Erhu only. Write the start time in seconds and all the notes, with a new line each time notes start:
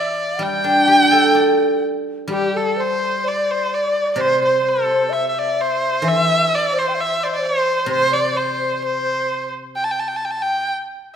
Already playing: D5
0.42 G5
2.33 G4
2.57 A4
2.80 C5
3.28 D5
3.51 C5
3.74 D5
4.14 D5
4.20 C5
4.45 C5
4.69 A4
5.12 E5
5.29 E5
5.38 D5
5.61 C5
6.08 E5
6.55 D5
6.78 C5
7.00 E5
7.23 C5 D5
7.34 D5
7.45 C5
7.91 C5
8.13 D5
8.36 C5
8.84 C5
9.76 G5
9.84 A5
9.91 G5
9.99 A5
10.08 G5
10.16 A5
10.25 G5
10.31 A5
10.42 G5